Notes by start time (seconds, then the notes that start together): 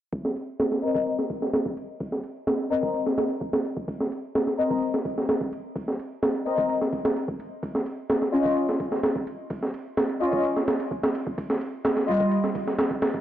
0.13 kick, ride
0.25 snare
0.36 ride
0.60 snare, ride
0.72 snare
0.83 C4 A#4 D#5, ride
0.95 kick
1.06 ride
1.19 snare
1.30 kick, ride
1.42 snare
1.53 snare, ride
1.66 kick
1.77 ride
2.00 kick, ride
2.12 snare
2.24 ride
2.47 snare, ride
2.59 ride
2.71 C4 A#4 D#5, ride
2.83 kick
2.94 ride
3.06 snare
3.18 snare
3.30 ride
3.41 kick
3.53 snare
3.65 ride
3.77 kick
3.88 kick, ride
4.00 snare
4.12 ride
4.35 snare, ride
4.47 snare
4.58 C4 A#4 D#5, ride
4.70 kick
4.82 ride
4.94 snare
5.05 kick, ride
5.18 snare
5.29 snare, ride
5.41 kick
5.53 ride
5.76 kick, ride
5.88 snare
5.99 ride
6.23 snare, ride
6.35 ride
6.46 C4 A#4 D#5, ride
6.58 kick
6.70 ride
6.82 snare
6.93 kick, ride
7.05 snare
7.16 ride
7.28 kick
7.40 ride
7.63 kick, ride
7.75 snare
7.86 ride
8.10 snare, ride
8.22 snare
8.33 C#4 F4 D#5, ride
8.45 kick
8.57 ride
8.69 snare
8.80 kick, ride
8.92 snare
9.03 snare, ride
9.16 kick
9.27 ride
9.50 kick, ride
9.63 snare
9.74 ride
9.97 snare, ride
10.09 ride
10.21 C#4 F4 D#5, ride
10.33 kick
10.44 ride
10.57 snare
10.68 snare
10.80 ride
10.91 kick
11.03 snare
11.15 ride
11.27 kick
11.38 kick, ride
11.50 snare
11.61 ride
11.85 snare, ride
11.97 snare
12.08 G3 F4 D#5, ride
12.20 kick
12.31 ride
12.44 snare
12.55 kick, ride
12.67 snare
12.78 snare, ride
12.91 kick
13.02 snare, ride
13.14 kick